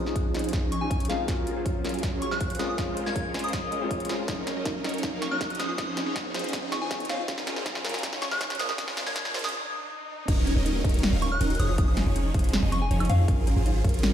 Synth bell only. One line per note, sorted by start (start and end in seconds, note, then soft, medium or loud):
0.72 0.79 C#6 medium
0.81 0.94 G#5 medium
1.09 1.32 F5 medium
2.22 2.30 C#6 medium
2.31 2.44 F#6 medium
2.59 2.65 D#6 medium
2.69 2.75 D#6 medium
3.06 3.14 G#6 medium
3.16 3.28 G#6 medium
3.44 3.81 D#6 medium
5.22 5.30 C#6 medium
5.31 5.44 F#6 medium
5.59 5.65 D#6 medium
5.68 5.75 D#6 medium
5.78 5.84 D#6 medium
5.87 5.93 D#6 medium
6.72 6.80 C#6 medium
6.81 6.94 G#5 medium
7.09 7.32 F5 medium
8.22 8.30 C#6 loud
8.31 8.44 F#6 medium
8.60 8.66 D#6 medium
8.69 8.75 D#6 medium
9.07 9.14 G#6 medium
9.16 9.28 G#6 medium
9.44 9.82 D#6 medium
11.22 11.30 C#6 medium
11.32 11.44 F#6 medium
11.60 11.66 D#6 medium
11.69 11.75 D#6 medium
11.78 11.84 D#6 medium
11.88 11.94 D#6 medium
12.72 12.80 C#6 loud
12.82 12.94 G#5 medium
13.09 13.32 F5 medium